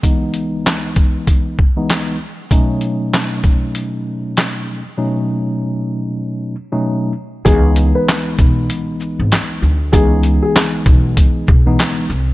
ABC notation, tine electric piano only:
X:1
M:4/4
L:1/16
Q:"Swing 16ths" 1/4=97
K:C#m
V:1 name="Tine electric piano" clef=bass
[C,,E,G,B,D]8- [C,,E,G,B,D]2 z [C,,E,G,B,D]3 z2 | [B,,F,A,CD]12- [B,,F,A,CD]3 z | [B,,F,A,CD]8- [B,,F,A,CD]2 z [B,,F,A,CD]3 z2 | [C,,E,G,B,D]12- [C,,E,G,B,D]3 z |
[C,,E,G,B,D]8- [C,,E,G,B,D]2 z [C,,E,G,B,D]3 z2 |]